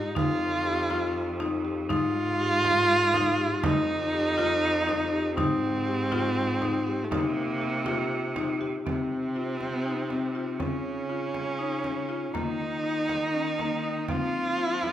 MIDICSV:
0, 0, Header, 1, 5, 480
1, 0, Start_track
1, 0, Tempo, 497512
1, 154, Time_signature, 7, 3, 24, 8
1, 14399, End_track
2, 0, Start_track
2, 0, Title_t, "Marimba"
2, 0, Program_c, 0, 12
2, 147, Note_on_c, 0, 63, 86
2, 517, Note_off_c, 0, 63, 0
2, 631, Note_on_c, 0, 67, 75
2, 816, Note_off_c, 0, 67, 0
2, 874, Note_on_c, 0, 65, 79
2, 1242, Note_off_c, 0, 65, 0
2, 1352, Note_on_c, 0, 63, 81
2, 1537, Note_off_c, 0, 63, 0
2, 1590, Note_on_c, 0, 67, 69
2, 1775, Note_off_c, 0, 67, 0
2, 1828, Note_on_c, 0, 63, 90
2, 2197, Note_off_c, 0, 63, 0
2, 2308, Note_on_c, 0, 67, 74
2, 2494, Note_off_c, 0, 67, 0
2, 2548, Note_on_c, 0, 65, 76
2, 2917, Note_off_c, 0, 65, 0
2, 3032, Note_on_c, 0, 63, 79
2, 3216, Note_off_c, 0, 63, 0
2, 3268, Note_on_c, 0, 67, 75
2, 3454, Note_off_c, 0, 67, 0
2, 3507, Note_on_c, 0, 63, 86
2, 3876, Note_off_c, 0, 63, 0
2, 3987, Note_on_c, 0, 67, 77
2, 4173, Note_off_c, 0, 67, 0
2, 4223, Note_on_c, 0, 65, 86
2, 4594, Note_off_c, 0, 65, 0
2, 4702, Note_on_c, 0, 63, 80
2, 4889, Note_off_c, 0, 63, 0
2, 4946, Note_on_c, 0, 67, 78
2, 5131, Note_off_c, 0, 67, 0
2, 5182, Note_on_c, 0, 63, 88
2, 5552, Note_off_c, 0, 63, 0
2, 5666, Note_on_c, 0, 67, 77
2, 5851, Note_off_c, 0, 67, 0
2, 5902, Note_on_c, 0, 65, 82
2, 6272, Note_off_c, 0, 65, 0
2, 6381, Note_on_c, 0, 63, 79
2, 6568, Note_off_c, 0, 63, 0
2, 6627, Note_on_c, 0, 67, 75
2, 6811, Note_off_c, 0, 67, 0
2, 6863, Note_on_c, 0, 63, 86
2, 7232, Note_off_c, 0, 63, 0
2, 7348, Note_on_c, 0, 67, 73
2, 7531, Note_off_c, 0, 67, 0
2, 7585, Note_on_c, 0, 65, 81
2, 7953, Note_off_c, 0, 65, 0
2, 8066, Note_on_c, 0, 63, 77
2, 8250, Note_off_c, 0, 63, 0
2, 8306, Note_on_c, 0, 67, 75
2, 8490, Note_off_c, 0, 67, 0
2, 8546, Note_on_c, 0, 60, 72
2, 8914, Note_off_c, 0, 60, 0
2, 9029, Note_on_c, 0, 65, 62
2, 9396, Note_off_c, 0, 65, 0
2, 9510, Note_on_c, 0, 63, 64
2, 9693, Note_off_c, 0, 63, 0
2, 9746, Note_on_c, 0, 60, 67
2, 9930, Note_off_c, 0, 60, 0
2, 9986, Note_on_c, 0, 65, 62
2, 10170, Note_off_c, 0, 65, 0
2, 10224, Note_on_c, 0, 61, 76
2, 10593, Note_off_c, 0, 61, 0
2, 10705, Note_on_c, 0, 65, 64
2, 11074, Note_off_c, 0, 65, 0
2, 11179, Note_on_c, 0, 63, 62
2, 11367, Note_off_c, 0, 63, 0
2, 11427, Note_on_c, 0, 61, 69
2, 11611, Note_off_c, 0, 61, 0
2, 11663, Note_on_c, 0, 65, 65
2, 11849, Note_off_c, 0, 65, 0
2, 11906, Note_on_c, 0, 58, 76
2, 12275, Note_off_c, 0, 58, 0
2, 12384, Note_on_c, 0, 63, 65
2, 12754, Note_off_c, 0, 63, 0
2, 12868, Note_on_c, 0, 61, 71
2, 13052, Note_off_c, 0, 61, 0
2, 13110, Note_on_c, 0, 58, 72
2, 13294, Note_off_c, 0, 58, 0
2, 13351, Note_on_c, 0, 63, 66
2, 13534, Note_off_c, 0, 63, 0
2, 13595, Note_on_c, 0, 60, 76
2, 13961, Note_off_c, 0, 60, 0
2, 14073, Note_on_c, 0, 65, 66
2, 14399, Note_off_c, 0, 65, 0
2, 14399, End_track
3, 0, Start_track
3, 0, Title_t, "Viola"
3, 0, Program_c, 1, 41
3, 0, Note_on_c, 1, 63, 107
3, 157, Note_on_c, 1, 65, 101
3, 171, Note_off_c, 1, 63, 0
3, 1595, Note_off_c, 1, 65, 0
3, 1830, Note_on_c, 1, 65, 121
3, 3509, Note_on_c, 1, 63, 110
3, 3523, Note_off_c, 1, 65, 0
3, 5169, Note_off_c, 1, 63, 0
3, 5175, Note_on_c, 1, 60, 100
3, 6797, Note_on_c, 1, 57, 54
3, 6811, Note_off_c, 1, 60, 0
3, 6862, Note_on_c, 1, 58, 88
3, 6877, Note_off_c, 1, 57, 0
3, 8304, Note_off_c, 1, 58, 0
3, 8543, Note_on_c, 1, 60, 81
3, 10218, Note_on_c, 1, 61, 85
3, 10233, Note_off_c, 1, 60, 0
3, 11906, Note_on_c, 1, 63, 101
3, 11920, Note_off_c, 1, 61, 0
3, 13589, Note_on_c, 1, 65, 96
3, 13604, Note_off_c, 1, 63, 0
3, 14399, Note_off_c, 1, 65, 0
3, 14399, End_track
4, 0, Start_track
4, 0, Title_t, "Cello"
4, 0, Program_c, 2, 42
4, 0, Note_on_c, 2, 44, 82
4, 153, Note_on_c, 2, 41, 81
4, 168, Note_off_c, 2, 44, 0
4, 1828, Note_on_c, 2, 44, 78
4, 1843, Note_off_c, 2, 41, 0
4, 3511, Note_on_c, 2, 41, 77
4, 3525, Note_off_c, 2, 44, 0
4, 5192, Note_on_c, 2, 44, 82
4, 5207, Note_off_c, 2, 41, 0
4, 6870, Note_on_c, 2, 48, 82
4, 6885, Note_off_c, 2, 44, 0
4, 8514, Note_off_c, 2, 48, 0
4, 8553, Note_on_c, 2, 48, 72
4, 10225, Note_on_c, 2, 49, 72
4, 10240, Note_off_c, 2, 48, 0
4, 11907, Note_on_c, 2, 51, 66
4, 11922, Note_off_c, 2, 49, 0
4, 13592, Note_on_c, 2, 53, 71
4, 13606, Note_off_c, 2, 51, 0
4, 14399, Note_off_c, 2, 53, 0
4, 14399, End_track
5, 0, Start_track
5, 0, Title_t, "Frame drum"
5, 158, Note_on_c, 9, 64, 60
5, 255, Note_off_c, 9, 64, 0
5, 870, Note_on_c, 9, 64, 50
5, 967, Note_off_c, 9, 64, 0
5, 1351, Note_on_c, 9, 64, 46
5, 1447, Note_off_c, 9, 64, 0
5, 1833, Note_on_c, 9, 64, 56
5, 1930, Note_off_c, 9, 64, 0
5, 2553, Note_on_c, 9, 64, 53
5, 2650, Note_off_c, 9, 64, 0
5, 3032, Note_on_c, 9, 64, 56
5, 3128, Note_off_c, 9, 64, 0
5, 3507, Note_on_c, 9, 64, 74
5, 3604, Note_off_c, 9, 64, 0
5, 4232, Note_on_c, 9, 64, 53
5, 4328, Note_off_c, 9, 64, 0
5, 4716, Note_on_c, 9, 64, 51
5, 4812, Note_off_c, 9, 64, 0
5, 5187, Note_on_c, 9, 64, 60
5, 5284, Note_off_c, 9, 64, 0
5, 5907, Note_on_c, 9, 64, 51
5, 6004, Note_off_c, 9, 64, 0
5, 6386, Note_on_c, 9, 64, 49
5, 6482, Note_off_c, 9, 64, 0
5, 6868, Note_on_c, 9, 64, 61
5, 6964, Note_off_c, 9, 64, 0
5, 7349, Note_on_c, 9, 64, 21
5, 7446, Note_off_c, 9, 64, 0
5, 7582, Note_on_c, 9, 64, 54
5, 7678, Note_off_c, 9, 64, 0
5, 8067, Note_on_c, 9, 64, 55
5, 8163, Note_off_c, 9, 64, 0
5, 8312, Note_on_c, 9, 64, 19
5, 8408, Note_off_c, 9, 64, 0
5, 8553, Note_on_c, 9, 64, 50
5, 8649, Note_off_c, 9, 64, 0
5, 8793, Note_on_c, 9, 64, 18
5, 8889, Note_off_c, 9, 64, 0
5, 9268, Note_on_c, 9, 64, 44
5, 9364, Note_off_c, 9, 64, 0
5, 9747, Note_on_c, 9, 64, 43
5, 9843, Note_off_c, 9, 64, 0
5, 10226, Note_on_c, 9, 64, 49
5, 10322, Note_off_c, 9, 64, 0
5, 10470, Note_on_c, 9, 64, 17
5, 10567, Note_off_c, 9, 64, 0
5, 10946, Note_on_c, 9, 64, 45
5, 11042, Note_off_c, 9, 64, 0
5, 11425, Note_on_c, 9, 64, 47
5, 11522, Note_off_c, 9, 64, 0
5, 11911, Note_on_c, 9, 64, 57
5, 12008, Note_off_c, 9, 64, 0
5, 12156, Note_on_c, 9, 64, 20
5, 12253, Note_off_c, 9, 64, 0
5, 12632, Note_on_c, 9, 64, 52
5, 12729, Note_off_c, 9, 64, 0
5, 13114, Note_on_c, 9, 64, 47
5, 13210, Note_off_c, 9, 64, 0
5, 13588, Note_on_c, 9, 64, 59
5, 13685, Note_off_c, 9, 64, 0
5, 14309, Note_on_c, 9, 64, 48
5, 14399, Note_off_c, 9, 64, 0
5, 14399, End_track
0, 0, End_of_file